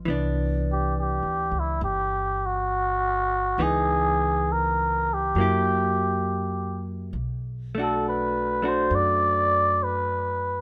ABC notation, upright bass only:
X:1
M:4/4
L:1/8
Q:"Swing" 1/4=68
K:Clyd
V:1 name="Upright bass" clef=bass
C,,2- (3C,, D,, ^C,, G,,,4 | ^C,,4 F,,4 | B,,,4 F,,4 |]